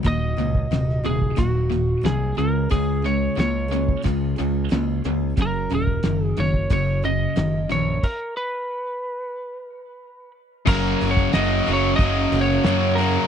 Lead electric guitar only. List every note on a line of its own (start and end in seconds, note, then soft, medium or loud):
0.07 1.09 D#5 loud
1.06 1.40 G#4 medium
1.39 2.07 F#4 medium
2.06 2.37 G#4 medium
2.38 2.71 A#4 medium
2.71 3.06 G#4 medium
3.06 3.38 C#5 medium
3.40 4.01 C#5 medium
5.42 5.73 A#4 medium
5.75 6.25 A#4 medium
6.25 6.41 G#4 medium
6.40 6.72 C#5 medium
6.73 7.05 C#5 medium
7.05 7.71 D#5 loud
7.72 8.05 C#5 medium
8.04 8.36 A#4 medium
8.37 10.31 B4 medium
10.68 11.13 A#4 loud
11.11 11.33 C#5 loud
11.34 11.73 D#5 medium
11.73 11.96 C#5 medium
11.96 12.41 D#5 loud
12.41 12.99 C#5 loud
12.95 13.27 A#4 medium